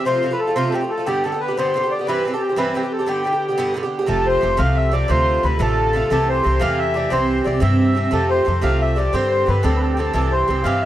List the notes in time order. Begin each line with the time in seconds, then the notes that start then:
0.00 E3
0.05 C3 F3 A3 F4 C5
0.23 C3 F3 A3 F4
0.31 F3 A3 F4 B4
0.39 A4
0.47 F3 A3 F4
0.55 C3 F3 A3 F4 C5
0.69 C3 F3 G4 A4
0.74 A3 F4 G4
0.81 F3 A3 F4
0.89 A4
0.98 F3 A3 F4
1.06 G2 D3 B3 G4
1.23 G2 D3 B3 G4 A4
1.32 D3 B3 G4
1.40 B4
1.48 D3 B3 G4
1.57 G2 D3 B3 G4 C5
1.74 G2 D3 B3 G4
1.84 D3 B3 G4
1.90 D5
1.99 D3 B3 G4
2.06 G2 E3 C4 G4 B4
2.25 G2 E3 C4 G4
2.31 G4 A4 B4
2.35 E3 C4
2.41 G4
2.49 E3 C4 G4
2.56 G2 E3 C4 G4 B4
2.74 G2 E3 C4 G4
2.83 E3 C4 G4
2.91 A4
2.99 E3 C4 G4
3.06 G2 D3 B3 G4
3.24 G2 D3 B3 G4
3.33 D3 B3 G4
3.48 D3 B3 G4
3.58 G2 D3 B3 G4
3.74 G2 D3 B3 G4
3.83 D3 B3 G4
3.99 D3 B3 G4
4.06 F1 C3 F3 A3 G4 A4
4.27 C5
4.41 F1 C3 F3 A3 G4
4.57 C2 C3 F3 A3 G4 F5
4.74 E5
4.92 C3 F3 A3 G4 D5
5.08 D2 C3 D3 A3 F4 C5
5.43 D2 C3 D3 A3 F4 B4
5.59 A1 C3 D3 A3 F4 A4
5.93 C3 D3 A3 F4
6.10 C2 C3 E3 A3 G4 A4
6.29 C5
6.43 C2 C3 E3 A3 G4
6.59 E2 C3 E3 A3 G4 F5
6.79 E5
6.94 C3 E3 A3 G4 D5
7.10 C2 C3 E3 C4 G4 C5
7.44 C2 C3 E3 C4 G4 D5
7.60 G2 C3 E3 C4 G4 E5
7.95 C3 E3 C4 G4
8.11 F2 C3 F3 A3 G4 A4
8.29 C5
8.45 F2 C3 F3 A3 G4
8.62 C2 C3 F3 A3 G4 F5
8.81 E5
8.96 C3 F3 A3 G4 D5
9.13 G2 D3 C4 G4 C5
9.30 C5
9.46 G2 D3 C4 G4 B4
9.63 D2 G2 D3 C4 G4 A4
9.77 B4
9.81 A4
9.94 G2 G4 A4
9.98 D3 C4 G4 A4
10.13 C2 G2 E3 C4 G4 A4
10.31 C5
10.48 C2 G2 E3 C4 G4
10.63 G2 E3 C4 G4 F5
10.82 E5